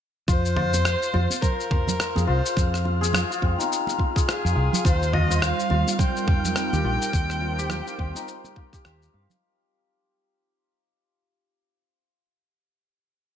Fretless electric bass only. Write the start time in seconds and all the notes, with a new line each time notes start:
0.28 F2
1.14 F2
2.16 F2
2.28 C2
2.57 F2
3.42 F2
4.45 F2
4.56 C2
4.85 D#2
5.71 D#2
6.73 D#2
6.84 A#1
7.14 D#2
7.99 D#2
8.85 D#2
9.14 G2